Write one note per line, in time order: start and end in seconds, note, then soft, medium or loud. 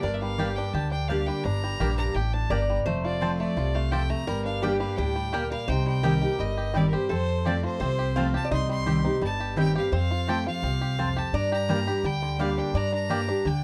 0.00 0.58 G1 medium
0.00 0.70 G2 medium
0.00 0.22 G3 medium
0.00 0.04 D4 medium
0.00 0.57 D4 medium
0.00 0.39 G4 medium
0.00 2.47 A#4 medium
0.00 0.15 D5 loud
0.14 0.22 E5 medium
0.20 1.28 G3 medium
0.20 0.57 F5 loud
0.38 0.72 G3 medium
0.38 0.47 A#3 medium
0.38 0.72 A#3 medium
0.38 0.72 D4 medium
0.38 0.48 G4 medium
0.38 0.73 G4 medium
0.38 0.48 D5 medium
0.38 0.48 G5 loud
0.56 0.90 D4 medium
0.56 0.74 G5 medium
0.73 1.29 D2 medium
0.73 1.41 D3 medium
0.73 1.24 G4 medium
0.73 0.90 A5 loud
0.91 1.08 D4 medium
0.91 1.09 G5 medium
1.08 1.43 G3 medium
1.08 1.18 A#3 medium
1.08 1.43 A#3 medium
1.08 1.44 D4 medium
1.08 1.18 G4 medium
1.08 1.44 G4 medium
1.08 1.19 D5 loud
1.08 1.28 F5 medium
1.08 1.19 G5 medium
1.26 1.63 G3 medium
1.26 1.45 G5 medium
1.44 1.72 G1 medium
1.44 2.12 G2 medium
1.44 1.95 D4 medium
1.44 1.97 A#5 loud
1.64 2.12 G3 medium
1.80 2.10 A#1 medium
1.80 2.13 G3 medium
1.80 1.89 A#3 medium
1.80 2.14 A#3 medium
1.80 2.14 D4 medium
1.80 2.15 G4 medium
1.80 1.89 G4 loud
1.80 2.14 G4 medium
1.80 1.89 D5 loud
1.80 1.90 G5 loud
1.97 2.33 D4 medium
1.97 2.16 A#5 loud
2.14 2.45 A1 medium
2.14 2.49 A2 medium
2.14 2.65 G4 medium
2.14 2.35 G5 medium
2.33 2.50 D4 medium
2.33 2.52 A5 loud
2.50 2.80 G1 medium
2.50 2.84 G2 medium
2.50 2.60 A#3 loud
2.50 2.86 D4 medium
2.50 2.60 G4 medium
2.50 2.83 D5 loud
2.50 2.60 D5 loud
2.50 2.60 G5 loud
2.50 2.77 A#5 medium
2.70 2.86 G3 medium
2.85 3.41 F1 medium
2.85 3.53 F2 medium
2.85 3.36 A3 medium
2.85 4.23 C5 loud
3.04 3.54 F4 medium
3.04 3.37 D5 loud
3.20 3.54 F3 medium
3.20 3.55 A3 medium
3.20 3.30 C4 medium
3.20 3.55 C4 medium
3.20 3.72 C4 medium
3.20 3.31 F4 medium
3.20 3.55 F4 medium
3.20 3.31 C5 loud
3.20 3.31 A5 loud
3.39 3.74 A3 medium
3.39 3.76 D5 medium
3.56 4.11 C2 medium
3.56 4.24 C3 medium
3.56 4.07 F4 medium
3.74 4.09 A3 medium
3.74 3.93 F5 medium
3.91 4.26 F2 medium
3.91 4.01 C4 medium
3.91 4.01 F4 loud
3.91 4.27 G4 medium
3.91 4.02 C5 loud
3.91 4.11 G5 medium
3.91 4.02 A5 loud
4.10 4.27 A3 medium
4.10 4.44 A#5 loud
4.27 4.82 G1 medium
4.27 4.95 G2 medium
4.27 4.77 G3 medium
4.27 4.64 A#4 loud
4.45 4.61 D4 medium
4.45 4.64 F5 medium
4.62 4.96 G3 medium
4.62 4.72 A#3 medium
4.62 4.97 A#3 medium
4.62 4.96 D4 medium
4.62 4.97 D4 medium
4.62 4.97 G4 loud
4.62 4.72 G4 loud
4.62 4.97 G4 loud
4.62 4.72 D5 loud
4.62 4.79 G5 medium
4.62 4.72 G5 loud
4.79 5.15 G3 medium
4.79 4.98 F5 medium
4.97 5.53 D2 medium
4.97 5.32 A2 medium
4.97 5.48 D4 medium
4.97 5.35 G4 medium
4.97 5.51 G5 medium
5.16 5.50 G3 medium
5.33 5.67 A#2 medium
5.33 5.42 A#3 loud
5.33 5.68 G4 medium
5.33 5.42 G4 medium
5.33 5.50 A#4 medium
5.33 5.43 D5 loud
5.33 5.43 G5 loud
5.51 5.69 G3 medium
5.51 5.67 A#4 medium
5.51 5.71 F5 medium
5.68 6.23 C2 medium
5.68 6.36 C3 medium
5.68 6.18 D#4 medium
5.68 6.01 C5 loud
5.68 5.86 G5 loud
5.86 6.36 G3 medium
5.86 6.42 G5 loud
6.03 6.21 D#3 medium
6.03 6.22 G3 medium
6.03 6.13 C4 medium
6.03 6.22 C4 medium
6.03 6.54 G4 medium
6.03 6.13 G4 loud
6.03 6.21 G4 medium
6.03 7.09 A#4 loud
6.03 6.13 D#5 medium
6.03 6.14 G5 loud
6.22 6.39 C4 soft
6.22 6.71 D#4 medium
6.22 6.39 G4 medium
6.39 6.94 G1 medium
6.39 7.07 G2 medium
6.39 6.73 G3 medium
6.39 6.78 D#5 loud
6.57 6.92 G4 medium
6.74 6.92 D#3 loud
6.74 7.10 G3 medium
6.74 6.93 G3 medium
6.74 6.84 C4 medium
6.74 6.93 C4 medium
6.74 6.84 G4 medium
6.74 6.92 G4 loud
6.74 6.89 D5 medium
6.74 6.84 D#5 loud
6.74 6.84 G5 loud
6.89 7.10 G4 medium
6.89 7.09 G4 medium
6.89 6.95 A#4 medium
6.94 7.10 C4 medium
6.94 7.11 C5 medium
7.09 7.65 F2 medium
7.09 7.78 F2 loud
7.09 7.80 C4 medium
7.09 7.79 A4 loud
7.09 7.48 C5 loud
7.45 7.79 F3 medium
7.45 7.80 A3 medium
7.45 7.54 C4 loud
7.45 7.80 C4 medium
7.45 7.55 F4 loud
7.45 7.80 F4 loud
7.45 7.95 G4 medium
7.45 7.55 C5 medium
7.45 7.64 D5 medium
7.45 7.55 A5 loud
7.63 8.12 F4 medium
7.63 8.31 C5 loud
7.80 8.35 C2 medium
7.80 8.49 C3 medium
7.80 8.16 C4 medium
7.80 8.13 C5 loud
7.99 8.33 G4 medium
8.16 8.34 F3 medium
8.16 8.34 A3 loud
8.16 8.25 C4 loud
8.16 9.56 C4 medium
8.16 8.34 C4 loud
8.16 8.25 F4 loud
8.16 8.33 F4 loud
8.16 8.26 C5 loud
8.16 8.45 F5 loud
8.16 8.26 A5 loud
8.34 8.51 C4 medium
8.34 8.51 F4 medium
8.34 8.51 G4 medium
8.34 8.51 A5 loud
8.45 8.51 D5 medium
8.51 9.06 C2 medium
8.51 9.19 C3 loud
8.51 9.01 D#4 medium
8.51 9.92 D#5 loud
8.51 8.69 C6 loud
8.69 9.18 G3 medium
8.69 9.19 C6 loud
8.86 9.04 D#3 medium
8.86 9.04 G3 medium
8.86 8.96 C4 loud
8.86 9.04 C4 medium
8.86 8.96 G4 medium
8.86 9.37 G4 medium
8.86 9.03 G4 medium
8.86 8.96 D#5 loud
8.86 8.96 G5 loud
9.05 9.22 C4 medium
9.05 9.54 D#4 medium
9.05 9.21 G4 medium
9.21 9.77 G1 medium
9.21 9.89 G2 medium
9.21 9.56 G3 medium
9.21 9.56 A5 loud
9.40 9.74 G4 medium
9.56 9.74 D#3 medium
9.56 9.74 G3 medium
9.56 9.93 G3 medium
9.56 9.66 C4 loud
9.56 9.75 C4 medium
9.56 9.66 G4 loud
9.56 9.74 G4 loud
9.56 9.67 D#5 loud
9.56 9.67 G5 loud
9.56 9.75 G5 loud
9.75 9.92 C4 medium
9.75 9.92 G4 medium
9.75 9.93 G4 medium
9.75 9.92 F5 medium
9.92 10.59 F2 medium
9.92 10.47 F2 medium
9.92 10.42 C4 medium
9.92 11.12 C5 loud
9.92 10.31 F5 loud
10.11 10.45 F4 medium
10.28 10.45 F3 medium
10.28 10.45 A3 medium
10.28 10.37 C4 loud
10.28 10.46 C4 medium
10.28 10.37 F4 loud
10.28 10.45 F4 loud
10.28 10.78 G4 medium
10.28 10.37 C5 loud
10.28 10.47 G5 loud
10.28 10.38 A5 loud
10.46 10.63 C4 medium
10.46 10.62 F4 medium
10.46 10.95 F4 medium
10.46 11.20 F5 loud
10.63 11.18 C2 medium
10.63 11.30 C3 medium
10.63 10.98 C4 medium
10.81 11.15 G4 medium
10.98 11.32 F2 medium
10.98 11.08 C4 loud
10.98 11.34 C4 medium
10.98 11.08 F4 loud
10.98 11.08 C5 medium
10.98 11.08 A5 loud
11.16 11.34 G4 medium
11.16 11.36 A5 loud
11.33 11.88 G2 medium
11.33 12.01 G2 medium
11.33 12.58 D4 medium
11.33 12.74 D5 loud
11.33 11.52 A#5 loud
11.52 11.87 G4 medium
11.52 12.07 A#5 loud
11.69 11.86 G3 medium
11.69 12.03 G3 medium
11.69 11.78 A#3 loud
11.69 11.87 A#3 medium
11.69 11.87 D4 medium
11.69 11.78 G4 medium
11.69 11.85 G4 loud
11.69 11.78 D5 loud
11.69 11.79 G5 loud
11.87 12.04 D4 medium
11.87 12.03 G4 medium
11.87 12.36 G4 medium
12.04 12.59 D2 medium
12.04 12.71 D3 medium
12.04 12.39 G3 medium
12.04 12.42 G5 loud
12.22 12.72 D3 medium
12.39 12.73 G3 medium
12.39 12.90 G3 medium
12.39 12.73 A#3 medium
12.39 12.49 A#3 medium
12.39 12.73 D4 medium
12.39 12.49 G4 medium
12.39 12.73 G4 loud
12.39 12.49 D5 loud
12.39 12.60 F5 loud
12.39 12.49 G5 loud
12.58 12.74 D4 medium
12.58 12.78 G5 loud
12.74 13.29 G2 medium
12.74 13.42 G2 loud
12.74 12.91 D4 medium
12.74 13.64 D5 loud
12.74 12.94 A#5 loud
12.93 13.27 D4 medium
12.93 13.48 A#5 loud
13.09 13.27 G3 medium
13.09 13.19 A#3 medium
13.09 13.27 A#3 medium
13.09 13.27 D4 medium
13.09 13.19 G4 loud
13.09 13.60 G4 medium
13.09 13.26 G4 loud
13.09 13.20 D5 loud
13.09 13.20 G5 loud
13.27 13.44 D4 medium
13.27 13.45 D4 medium
13.27 13.44 G4 medium
13.45 13.64 D2 medium
13.45 13.64 D3 medium
13.45 13.64 D4 medium
13.45 13.64 G5 medium